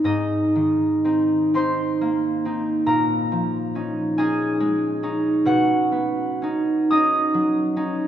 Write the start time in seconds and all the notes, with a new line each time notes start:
Already playing: A#3 C4 G#4
0.04 G#2 D#4 D#5
0.55 D#3
1.04 C4 D#4
1.54 C4 D#4 C5 C6
2.01 A#3
2.45 C4 D#4
2.86 A#2 A#4 A#5
3.32 F3
3.75 C#4 D#4
4.18 C#4 D#4 G#4 G#5
4.60 G#3
5.03 C#4 D#4
5.45 B2 F#4 F#5
5.92 B3
6.42 C#4 D#4
6.91 C#4 D#4 D#5 D#6
7.34 F#3
7.76 C#4 D#4